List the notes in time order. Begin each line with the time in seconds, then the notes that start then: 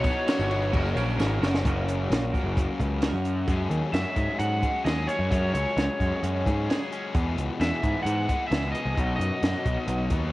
Already playing: F#4 C#5 D#5 B5 C#6
0.02 B2 F#3 B3 D#4 C#5, kick, tambourine, crash
0.06 D#4 F#4
0.27 B2 F#3 B3 D#4 F#4 C#5, snare, tambourine, crash
0.39 G1, tambourine
0.50 B2 F#3 B3 D#4 F#4 C#5, tambourine, crash
0.63 tambourine
0.70 F#1 F#2 C#3 F#3 A#3 A#4 C#5, kick, crash
0.74 F#3 C#4 F#4 A#5
0.86 tambourine
0.95 A#1 F#2 C#3 F#3 A#3 C#4 F#4 A#4, tambourine, crash
1.09 tambourine
1.18 G#1 F#2 C#3 F#3 A#3 C#4 F#4 A#4, snare, tambourine
1.41 F#1 F#2 C#3 F#3 A#3 C#4 F#4 A#4, snare, tambourine
1.54 snare, tambourine
1.65 F#1 F#2 C#3 F#3 A#3 C#4 F#4 A#4, kick, closed hi-hat
1.89 closed hi-hat
2.10 A#1, snare, closed hi-hat
2.32 C#3 F#3 A#3 C#4 F#4 A#4, kick, closed hi-hat
2.37 F#2
2.44 F#1
2.57 kick, closed hi-hat
2.80 C#2, kick, closed hi-hat
3.01 F#3 A#3 C#4 F#4 A#4, snare, closed hi-hat
3.13 F#2
3.25 closed hi-hat
3.48 F#2 F#3 G#3 C#4 G#4, kick, closed hi-hat
3.70 D#2, closed hi-hat
3.93 F#2 F#3 G#3 C#4 G#4 E5, snare, closed hi-hat
4.16 G#2 G#3, kick, closed hi-hat
4.39 G#2 F#3 F#5, closed hi-hat
4.63 G#3 C#4 G#4, kick, closed hi-hat
4.85 D#2 F#3 G#3 C#4 G#4 D#5, snare, closed hi-hat
5.07 G#3 C#4 G#4 C#5, closed hi-hat
5.19 F#2
5.31 F#2 F#3 G#3 C#4 G#4, kick, closed hi-hat
5.54 C#2 C#5, closed hi-hat
5.77 C#2 F#3 G#3 C#4 G#4, snare, closed hi-hat
6.00 F#2 G#3, kick, closed hi-hat
6.23 F#2 F#3, closed hi-hat
6.46 G#2 G#3 C#4 G#4, kick, closed hi-hat
6.68 F#3 G#3 C#4 G#4, snare, closed hi-hat
6.92 G#3 C#4 G#4, closed hi-hat
7.14 E2 B2 E3 G#3 B3 G#4, kick, closed hi-hat
7.37 C#2, closed hi-hat
7.60 E2 E3 G#3 B3 G#4 E5, snare, closed hi-hat
7.83 G#2 G#3, kick, closed hi-hat
8.03 G#2 E3 F#5, closed hi-hat
8.28 E3 G#3 B3 G#4, kick, closed hi-hat
8.47 C#2 E2 E5
8.52 B2 E3 G#3 B3 G#4, snare, closed hi-hat
8.72 E3 G#3 B3 G#4 D#5, closed hi-hat
8.85 C2
8.97 B1 B2 F#3 B3 D#4 F#4, kick, closed hi-hat
9.16 F#2 D#5
9.21 closed hi-hat
9.42 F#2 F#3 B3 D#4 F#4, snare, closed hi-hat
9.66 B1 B3, kick, closed hi-hat
9.88 B1 F#3, closed hi-hat
10.10 D#2 B3 D#4 F#4, kick, closed hi-hat